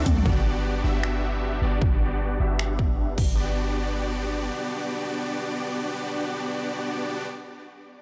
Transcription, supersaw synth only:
0.06 0.23 C4 loud
0.06 0.23 D4 medium
0.06 0.23 F#4 medium
0.06 0.23 A4 medium
0.06 0.23 D5 loud
0.26 0.82 B3 medium
0.26 0.82 D4 medium
0.26 0.82 F#4 medium
0.26 0.82 G4 medium
0.26 0.82 D5 loud
0.84 1.60 B3 medium
0.84 1.60 D4 medium
0.84 1.60 F#4 medium
0.84 1.60 G4 medium
0.84 1.60 E5 loud
1.62 1.79 B3 medium
1.62 1.79 D4 medium
1.62 1.79 F#4 medium
1.62 1.79 G4 medium
1.62 1.79 D5 loud
2.40 3.16 B3 medium
2.40 3.16 D4 medium
2.40 3.16 F#4 medium
2.40 3.16 G4 medium
2.40 3.16 E5 loud
3.18 7.25 B3 medium
3.18 7.25 D4 medium
3.18 7.25 F#4 medium
3.18 7.25 G4 medium
3.18 7.25 D5 medium

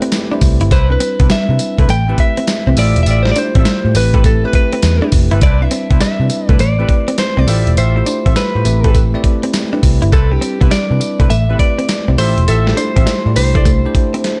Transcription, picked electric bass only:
0.42 0.58 C2 loud
0.61 0.69 G1 loud
0.71 0.95 C2 loud
1.20 1.28 C2 medium
1.30 muted picked electric bass stroke medium
1.49 1.58 C3 loud
1.78 1.87 C2 medium
1.89 2.13 A1 loud
2.67 2.75 C2 medium
2.77 2.93 A1 loud
2.96 3.05 E1 loud
3.06 3.31 A1 loud
3.55 3.64 A1 loud
3.65 muted picked electric bass stroke medium
3.85 3.93 A2 medium
3.95 4.44 A1 loud
4.83 4.99 E2 loud
5.12 5.28 F1 loud
5.32 5.40 G1 loud
5.42 5.66 C2 loud
5.91 5.99 C2 medium
6.00 muted picked electric bass stroke soft
6.20 6.28 C3 loud
6.49 6.58 C2 loud
6.59 6.84 A1 loud
7.37 7.46 C2 medium
7.47 7.63 A1 loud
7.67 7.75 E1 loud
7.77 8.01 A1 loud
8.26 8.34 A1 medium
8.36 muted picked electric bass stroke medium
8.55 8.64 A2 loud
8.65 9.14 A1 loud
9.83 9.99 C2 loud
10.02 10.11 G1 loud
10.13 10.37 C2 loud
10.61 10.70 C2 loud
10.71 muted picked electric bass stroke medium
10.91 10.99 C3 loud
11.20 11.28 C2 medium
11.30 11.54 A1 loud
12.08 12.17 C2 medium
12.18 12.34 A1 loud
12.38 12.46 E1 medium
12.48 12.72 A1 loud
12.96 13.05 A1 loud
13.26 13.34 A2 loud
13.36 13.85 C2 medium

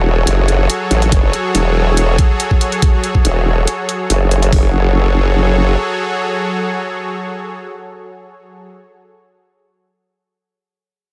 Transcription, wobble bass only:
0.00 0.25 E1 medium
0.27 0.68 F#1 medium
0.91 1.10 A1 medium
1.12 1.32 F#1 medium
1.55 2.17 E1 medium
3.25 3.66 E1 medium
4.10 4.51 F#1 medium
4.53 5.76 F#1 medium

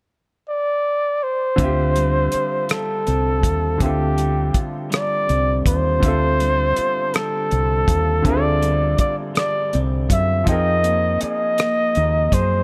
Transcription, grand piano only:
1.56 3.75 D3 medium
1.56 3.76 C4 medium
1.56 3.77 E5 medium
1.62 3.78 F4 medium
1.62 3.79 G4 medium
3.78 5.98 D3 medium
3.78 5.98 C4 medium
3.82 6.00 F4 soft
3.82 6.01 A4 medium
3.82 6.00 E5 medium
6.00 8.20 D3 medium
6.00 8.21 C4 medium
6.00 8.22 E5 soft
6.06 8.23 F4 medium
6.06 8.24 A4 medium
8.22 10.42 D3 medium
8.22 10.43 C4 medium
8.26 10.45 F4 medium
8.26 10.44 E5 medium
8.30 8.34 G#4 medium
8.37 10.49 A4 medium
10.44 12.63 F3 medium
10.44 12.63 C4 medium
10.44 12.63 D#4 medium
10.49 12.63 G#4 medium
10.49 12.63 A#4 medium
10.49 12.63 G5 medium

